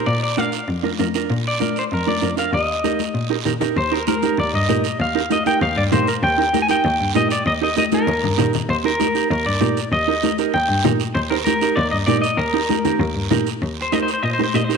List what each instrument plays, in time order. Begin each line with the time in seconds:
0.06 cello A#2, clean electric guitar D5, long guiro
0.23 clean electric guitar D5
0.37 clean electric guitar D4 F4 A#4 F5, high conga, short guiro
0.52 short guiro
0.68 cello F2, long guiro
0.83 clean electric guitar D4 F4 A#4, high conga
0.99 cello F2, clean electric guitar D4 F4 A#4, high conga, short guiro
1.14 clean electric guitar D4 F4 A#4, short guiro
1.30 cello A#2, long guiro
1.48 clean electric guitar D5
1.60 clean electric guitar D4 F4 A#4, high conga, short guiro
1.76 clean electric guitar C5, short guiro
1.91 cello F2, clean electric guitar A#4, long guiro
2.07 clean electric guitar D4 F4 A#4 D5, high conga
2.22 cello F2, clean electric guitar D4 F4 A#4, high conga, short guiro
2.37 clean electric guitar D4 F4 A#4 F5, short guiro
2.53 cello D#2, clean electric guitar D#5, long guiro
2.84 clean electric guitar D#4 G4 A#4, high conga, short guiro
2.99 high conga, short guiro
3.14 cello A#2, long guiro
3.30 clean electric guitar D#4 G4 A#4
3.45 cello A#2, clean electric guitar D#4 G4 A#4, low conga, short guiro
3.60 clean electric guitar D#4 G4 A#4, low conga, short guiro
3.77 cello D#2, clean electric guitar C5, long guiro
3.92 clean electric guitar D#4 G4 A#4
4.07 clean electric guitar D#4 G4 A#4, high conga, short guiro
4.22 clean electric guitar D#4 G4 A#4, high conga, short guiro
4.37 cello D#2, clean electric guitar D5, long guiro
4.53 cello G2, clean electric guitar D#5
4.69 cello A#2, clean electric guitar D#4 G4 A#4, high conga, short guiro
4.84 short guiro
5.00 cello D#2, clean electric guitar F5, long guiro
5.15 clean electric guitar D#4 G4 A#4
5.30 clean electric guitar D#4 G4 A#4 D#5, high conga, short guiro
5.46 clean electric guitar D#4 G4 A#4 G5, high conga, short guiro
5.61 cello D#2, clean electric guitar F5, long guiro
5.77 cello G2, clean electric guitar D5
5.92 cello A#2, clean electric guitar D#4 G4 A#4 C5, high conga, low conga, short guiro
6.08 clean electric guitar A#4, short guiro
6.23 cello D#2, clean electric guitar G5, long guiro
6.38 clean electric guitar D#4 G4 A#4
6.53 clean electric guitar D#4 G4 A#4, high conga, short guiro
6.62 clean electric guitar G#5
6.68 clean electric guitar D#4 G4 A#4 G5, high conga, short guiro
6.84 cello D#2, long guiro
7.00 cello G2
7.15 cello A#2, clean electric guitar D#4 G4 A#4 D#5, high conga, short guiro
7.30 clean electric guitar D5, short guiro
7.46 cello D#2, clean electric guitar D#5, long guiro
7.61 clean electric guitar D#4 G4 A#4 D#5
7.77 clean electric guitar D#4 G4 A#4 D#5, high conga, short guiro
7.92 clean electric guitar D#4 G4 A#4, high conga, short guiro
8.07 cello D#2, high conga, long guiro
8.23 cello G2, low conga
8.38 cello A#2, clean electric guitar D#4 G4 A#4, low conga, short guiro
8.53 low conga, short guiro
8.69 cello D#2, clean electric guitar C5, long guiro
8.85 clean electric guitar D#4 G4 A#4
9.00 clean electric guitar D#4 G4 A#4, high conga, short guiro
9.15 clean electric guitar D#4 G4 A#4, short guiro
9.31 cello D#2, clean electric guitar A#4, long guiro
9.46 cello G2, clean electric guitar D5
9.61 cello A#2, clean electric guitar D#4 G4 A#4, high conga, short guiro
9.77 short guiro
9.92 cello D#2, clean electric guitar D#5, long guiro
10.08 clean electric guitar D#4 G4 A#4
10.23 clean electric guitar D#4 G4 A#4, high conga, short guiro
10.38 clean electric guitar D#4 G4 A#4, short guiro
10.54 cello D#2, clean electric guitar G5, long guiro
10.69 cello G2
10.84 cello A#2, clean electric guitar D#4 G4 A#4, high conga, low conga, short guiro
11.00 short guiro
11.14 cello D#2, clean electric guitar C5, long guiro
11.30 clean electric guitar D#4 G4 A#4 C5
11.45 clean electric guitar D#4 G4 A#4, high conga, short guiro
11.61 clean electric guitar D#4 G4 A#4, short guiro
11.76 cello D#2, clean electric guitar D5, long guiro
11.91 cello G2, clean electric guitar D#5
12.06 cello A#2, clean electric guitar D#4 G4 A#4 D5, high conga, short guiro
12.22 clean electric guitar D#5, short guiro
12.37 cello D#2, clean electric guitar A#4, long guiro
12.54 clean electric guitar D#4 G4 A#4
12.69 clean electric guitar D#4 G4 A#4, high conga, short guiro
12.85 clean electric guitar D#4 G4 A#4, high conga, low conga, short guiro
13.00 cello D#2, long guiro
13.15 cello G2
13.31 cello A#2, clean electric guitar D#4 G4 A#4, high conga, low conga, short guiro
13.46 short guiro
13.62 cello D#2, long guiro
13.82 clean electric guitar C5
13.92 clean electric guitar D#4 G4 A#4 D#5, high conga, short guiro
14.02 clean electric guitar C5
14.08 short guiro
14.14 clean electric guitar C5
14.23 cello A#2, clean electric guitar D#5, long guiro
14.34 clean electric guitar C5
14.39 clean electric guitar D#4 G4 A#4, high conga
14.44 clean electric guitar C5
14.54 cello A#2, clean electric guitar D#4 G4 A#4 D#5, high conga, short guiro
14.64 clean electric guitar C5
14.69 clean electric guitar D#4 G4 A#4, short guiro